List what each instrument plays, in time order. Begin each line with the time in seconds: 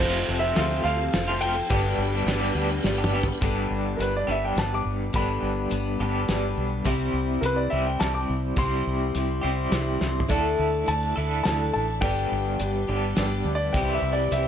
Already playing: grand piano C5
0.00 fingered electric bass F1, clean electric guitar F2 C3 F3 A3 C4 F4, steel-string acoustic guitar F3 C4 F4 A4, tonewheel organ C4 F4 A4, upright piano F4 A4 C5
0.28 fingered electric bass F1
0.39 clean electric guitar A3 C4 F4, grand piano E5
0.43 clean electric guitar F3
0.55 fingered electric bass D2, clean electric guitar F2 C3 F3 A3 C4 F4, steel-string acoustic guitar F3 C4 F4 A4, upright piano F4 A4 C5, snare, ride
0.84 fingered electric bass D2, clean electric guitar F3 A3 C4 F4, grand piano F5
1.00 muted clean electric guitar stroke
1.13 fingered electric bass F1, steel-string acoustic guitar F3 C4 F4 A4, upright piano F4 A4 C5, snare, ride
1.28 clean electric guitar F3 A3 C4 F4
1.41 clean electric guitar F3 A3 C4 F4, grand piano G5, ride
1.57 muted clean electric guitar stroke
1.69 fingered electric bass G1, clean electric guitar G2 D3 G3 B3 D4 G4, steel-string acoustic guitar G2 D3 G3 B3 D4 B4, tonewheel organ G4 B4, upright piano G4 B4 D5, kick, ride
1.98 fingered electric bass G1
2.12 clean electric guitar G3 B3 D4 G4
2.26 fingered electric bass G1, clean electric guitar G2 D3 G3 B3 D4 G4, steel-string acoustic guitar G3 B3 D4 B4, upright piano G4 B4 D5, snare, ride
2.55 fingered electric bass D2, clean electric guitar G3 B3 D4 G4
2.71 muted clean electric guitar stroke
2.83 fingered electric bass G1, steel-string acoustic guitar G3 B3 D4 B4, upright piano G4 B4 D5, snare
2.98 clean electric guitar G3 B3 D4 G4
3.04 mid tom
3.13 clean electric guitar G3 B3 D4 G4
3.23 floor tom
3.28 muted clean electric guitar stroke
3.41 fingered electric bass G1, clean electric guitar G2 D3 G3 B3 D4 G4, steel-string acoustic guitar G2 D3 G3 B3 D4 B4, kick, closed hi-hat
3.71 fingered electric bass G1
3.97 fingered electric bass G1, steel-string acoustic guitar G3 B3 D4 B4, grand piano A#4, closed hi-hat
4.02 grand piano B4
4.17 grand piano D5
4.27 fingered electric bass G1, clean electric guitar G2 D3 G3 B3 D4 G4, steel-string acoustic guitar G3 B3 D4 B4, grand piano E5
4.45 grand piano G5
4.56 fingered electric bass G1, steel-string acoustic guitar G3 B3 D4 B4, grand piano A5, snare, closed hi-hat
4.74 grand piano D6
4.85 fingered electric bass G1
5.13 fingered electric bass G1, steel-string acoustic guitar G2 D3 G3 B3 D4 B4, clean electric guitar G2 D3 G3 B3 G4, grand piano B5, kick, closed hi-hat
5.17 clean electric guitar D4
5.42 fingered electric bass G1
5.69 fingered electric bass G1, steel-string acoustic guitar G3 B3 D4 B4, closed hi-hat
5.99 fingered electric bass G1, clean electric guitar G2 D3 G3 B3 D4 G4, steel-string acoustic guitar G3 B3 D4 B4
6.28 fingered electric bass G1, steel-string acoustic guitar G3 B3 D4 B4, snare, closed hi-hat
6.57 fingered electric bass B1
6.84 fingered electric bass C2, steel-string acoustic guitar C3 G3 C4 E4 C5, clean electric guitar C3 G3 C4 E4 G4, kick, closed hi-hat
7.13 fingered electric bass C2
7.41 fingered electric bass C2, steel-string acoustic guitar G3 C4 E4 C5, grand piano A#4, closed hi-hat
7.45 grand piano B4
7.56 grand piano D5
7.70 fingered electric bass C2, clean electric guitar C3 G3 C4 E4 G4, steel-string acoustic guitar C4 E4 C5, grand piano E5
7.87 grand piano G5
7.99 fingered electric bass C2, steel-string acoustic guitar G3 C4 E4 C5, grand piano A5, snare, closed hi-hat
8.14 grand piano D6
8.29 fingered electric bass C2
8.57 fingered electric bass C2, steel-string acoustic guitar C3 G3 C4 E4 C5, clean electric guitar C3 G3 C4 E4 G4, grand piano C6, kick, closed hi-hat
8.87 fingered electric bass C2
9.15 fingered electric bass C2, steel-string acoustic guitar G3 C4 E4 C5, closed hi-hat
9.41 fingered electric bass C2, clean electric guitar C3 G3 C4 E4 G4, steel-string acoustic guitar C4 E4 C5
9.70 fingered electric bass C2, steel-string acoustic guitar G3 C4 E4 C5, snare, closed hi-hat
10.00 fingered electric bass C2, steel-string acoustic guitar C4 E4 C5, snare
10.20 floor tom
10.27 fingered electric bass D2, clean electric guitar D3 A3 E4, steel-string acoustic guitar D3 A3 D4 E4 A4, tonewheel organ D4 E4 A4, upright piano E4 A4 D5, kick, closed hi-hat
10.31 clean electric guitar A4
10.59 fingered electric bass D2
10.86 fingered electric bass D2, steel-string acoustic guitar A3 D4 E4 A4, upright piano E4 A4 D5, grand piano A5, closed hi-hat
11.16 fingered electric bass D2, clean electric guitar D3 A3 E4 A4
11.43 fingered electric bass D2, steel-string acoustic guitar A3 D4 E4 A4, upright piano E4 A4 D5, grand piano A5, snare, closed hi-hat
11.72 fingered electric bass A1, steel-string acoustic guitar D4 E4 A4, grand piano A5
12.01 fingered electric bass G1, clean electric guitar G2 D3 G3 B3 D4 G4, steel-string acoustic guitar G2 D3 G3 B3 D4 G4, tonewheel organ D4 G4 B4, upright piano G4 B4 D5, grand piano G5, kick, closed hi-hat
12.32 fingered electric bass G1
12.59 fingered electric bass G1, steel-string acoustic guitar G3 B3 D4 G4, upright piano G4 B4 D5, closed hi-hat
12.87 fingered electric bass G1, clean electric guitar G2 D3 G3 B3 D4 G4, steel-string acoustic guitar G3 B3 D4 G4
13.16 fingered electric bass G1, steel-string acoustic guitar G3 B3 D4 G4, upright piano G4 B4 D5, snare, closed hi-hat
13.45 fingered electric bass D2, steel-string acoustic guitar G3 B3 D4 G4
13.55 grand piano D5
13.72 fingered electric bass C2, steel-string acoustic guitar C3 G3 C4 E4 G4, clean electric guitar C3, tonewheel organ E4 G4 C5, upright piano G4 C5 E5, grand piano G5, kick, closed hi-hat
13.76 clean electric guitar E3 G3 E4 G4
13.94 grand piano E5
14.02 fingered electric bass C2
14.13 grand piano D5
14.30 fingered electric bass C2, steel-string acoustic guitar G3 C4 E4 G4, upright piano G4 C5 E5, grand piano E5, closed hi-hat